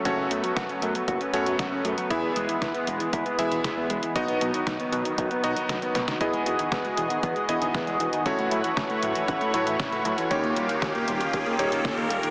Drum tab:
HH |x-xxxxxxxxxxx-xx|x-xxxxxxxxxxx-xx|xxxxxxxxxxxxxxxx|xxxxxxxxxxxxxxxx|
SD |----o-------o---|----o-------o---|----o-------o-oo|----o-------o---|
BD |o---o---o---o---|o---o---o---o---|o---o---o-------|o---o---o---o---|

HH |xxxxxxxxxxxxxxxx|xxxxxxxxxxxxxxxx|
SD |----o-------o---|----o-------o---|
BD |o---o---o---o---|o---o---o---o---|